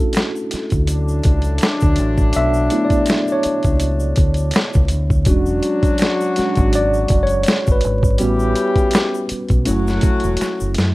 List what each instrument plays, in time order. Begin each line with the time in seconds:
Already playing: tine electric piano A3 C#4 D4 E4 F#4 A4
0.13 finger snap, closed hi-hat, shaker
0.17 snare
0.36 shaker
0.51 muted fingered electric bass stroke, snare, closed hi-hat, shaker
0.70 fingered electric bass D2, kick, closed hi-hat, shaker
0.87 horn section D3 F#3 A3 D4, closed hi-hat, shaker
1.08 shaker
1.23 fingered electric bass C#2, kick, closed hi-hat, shaker
1.42 closed hi-hat, shaker
1.58 finger snap, closed hi-hat, shaker
1.63 snare
1.80 fingered electric bass D2, kick, shaker
1.96 fingered electric bass A1, closed hi-hat, shaker
2.18 kick, shaker
2.33 fingered electric bass B1, tine electric piano E5, closed hi-hat, shaker
2.54 shaker
2.70 tine electric piano A3 B3 D4 E4, closed hi-hat, shaker
2.85 tine electric piano D5
2.90 kick, closed hi-hat, shaker
3.06 finger snap, closed hi-hat, shaker
3.10 snare
3.28 shaker
3.32 tine electric piano C#5
3.43 muted fingered electric bass stroke, closed hi-hat, shaker
3.63 fingered electric bass C#2, kick, closed hi-hat, shaker
3.80 closed hi-hat, shaker
4.00 shaker
4.16 fingered electric bass D2, kick, closed hi-hat, shaker
4.34 closed hi-hat, shaker
4.51 finger snap, closed hi-hat, shaker
4.56 snare
4.73 fingered electric bass C#2, kick, shaker
4.88 fingered electric bass D2, closed hi-hat, shaker
5.10 kick, shaker
5.25 fingered electric bass E1, horn section F#3 D4 F#4, tine electric piano G#3 C#4 D4 F#4, kick, closed hi-hat, shaker
5.46 shaker
5.63 closed hi-hat, shaker
5.83 kick, closed hi-hat, shaker
5.98 finger snap, closed hi-hat, shaker
6.02 snare
6.21 shaker
6.36 tine electric piano G#3 C#4 D4 F#4, muted fingered electric bass stroke, snare, closed hi-hat, shaker
6.55 fingered electric bass G#1, kick, closed hi-hat, shaker
6.73 tine electric piano D5, closed hi-hat, shaker
6.94 shaker
7.08 fingered electric bass F#1, kick, closed hi-hat, shaker
7.23 tine electric piano C#5, closed hi-hat
7.29 shaker
7.43 finger snap, closed hi-hat, shaker
7.48 snare
7.67 fingered electric bass G#1, kick, shaker
7.72 tine electric piano B4
7.81 fingered electric bass G#1, closed hi-hat, shaker
8.03 kick, shaker
8.18 fingered electric bass A1, horn section G3 C#4 E4 G4, tine electric piano G3 B3 C#4 F#4, closed hi-hat, shaker
8.39 shaker
8.55 closed hi-hat, shaker
8.76 kick, closed hi-hat, shaker
8.91 finger snap, closed hi-hat, shaker
8.95 snare
9.15 shaker
9.29 muted fingered electric bass stroke, closed hi-hat, shaker
9.49 fingered electric bass B1, kick, closed hi-hat, shaker
9.65 fingered electric bass F#1, horn section F#3 A3 C#4 F#4, tine electric piano A3 C#4 E4, closed hi-hat, shaker
9.87 snare, shaker
10.01 kick, closed hi-hat, shaker
10.20 closed hi-hat, shaker
10.24 fingered electric bass E1
10.37 closed hi-hat
10.41 finger snap, muted fingered electric bass stroke, snare, shaker
10.60 fingered electric bass F#1, shaker
10.74 fingered electric bass F#2, snare, closed hi-hat, shaker